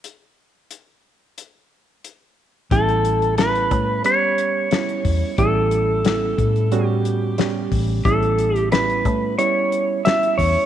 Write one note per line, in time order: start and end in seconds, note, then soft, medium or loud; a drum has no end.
0.04 closed hi-hat soft
0.71 closed hi-hat soft
1.38 closed hi-hat soft
2.04 closed hi-hat soft
2.71 3.71 A1 medium
2.71 3.34 G3 medium
2.71 3.34 B3 medium
2.71 3.35 C#4 medium
2.71 3.35 E4 medium
2.71 3.38 A4 medium
2.71 kick medium
2.71 closed hi-hat medium
2.89 closed hi-hat soft
3.05 closed hi-hat medium
3.22 closed hi-hat soft
3.38 4.01 G3 medium
3.38 4.01 B3 medium
3.38 4.01 C#4 medium
3.38 4.02 E4 medium
3.38 4.05 B4 medium
3.38 snare medium
3.38 closed hi-hat medium
3.55 closed hi-hat soft
3.71 4.02 A2 medium
3.71 kick medium
3.71 closed hi-hat medium
4.04 4.68 G3 medium
4.04 4.68 B3 medium
4.04 4.68 C#4 medium
4.04 4.68 G4 medium
4.04 5.43 C#5 medium
4.04 closed hi-hat medium
4.38 closed hi-hat medium
4.71 5.35 G3 medium
4.71 5.35 B3 medium
4.71 5.35 C#4 medium
4.71 5.35 E4 medium
4.71 snare medium
4.71 closed hi-hat medium
4.89 closed hi-hat soft
5.05 5.21 E2 medium
5.05 kick medium
5.05 open hi-hat medium
5.22 muted fingered electric bass stroke soft
5.38 6.34 A1 medium
5.38 6.01 G3 medium
5.38 6.02 B3 medium
5.38 6.02 C#4 medium
5.38 6.02 E4 medium
5.38 6.87 A4 medium
5.38 kick medium
5.38 closed hi-hat medium
5.71 closed hi-hat medium
6.05 6.68 G3 medium
6.05 6.68 B3 medium
6.05 6.68 C#4 medium
6.05 6.68 E4 medium
6.05 snare medium
6.05 closed hi-hat medium
6.38 7.68 A2 medium
6.38 kick medium
6.38 closed hi-hat soft
6.56 closed hi-hat soft
6.72 7.35 G3 medium
6.72 7.35 B3 medium
6.72 7.35 C#4 medium
6.72 7.35 F#4 medium
6.72 closed hi-hat medium
6.87 7.68 G4 medium
7.05 closed hi-hat medium
7.38 8.02 G3 medium
7.38 8.02 B3 medium
7.38 8.02 C#4 medium
7.38 8.02 G4 medium
7.38 snare medium
7.38 closed hi-hat medium
7.72 8.02 A1 medium
7.72 kick medium
7.72 open hi-hat medium
8.05 9.05 A1 medium
8.05 8.68 G3 medium
8.05 8.69 B3 medium
8.05 8.69 C#4 medium
8.05 8.69 E4 medium
8.05 8.57 A4 medium
8.05 kick medium
8.05 closed hi-hat medium
8.23 closed hi-hat soft
8.38 closed hi-hat medium
8.56 8.72 G4 medium
8.56 closed hi-hat soft
8.72 9.35 G3 medium
8.72 9.35 B3 medium
8.72 9.35 C#4 medium
8.72 9.35 E4 medium
8.72 9.38 B4 medium
8.72 snare medium
8.72 closed hi-hat medium
8.90 closed hi-hat soft
9.05 9.36 A2 medium
9.05 kick medium
9.05 closed hi-hat medium
9.38 10.02 G3 medium
9.38 10.02 B3 medium
9.38 10.02 C#4 medium
9.38 10.02 E4 medium
9.38 10.07 C#5 medium
9.38 closed hi-hat medium
9.72 closed hi-hat medium
10.05 10.66 G3 medium
10.05 10.66 B3 soft
10.05 10.66 C#4 medium
10.05 10.66 E4 medium
10.05 10.39 E5 medium
10.05 snare loud
10.05 closed hi-hat medium
10.23 closed hi-hat soft
10.38 10.55 E2 medium
10.38 10.66 C#5 medium
10.38 kick medium
10.38 open hi-hat medium
10.56 muted fingered electric bass stroke soft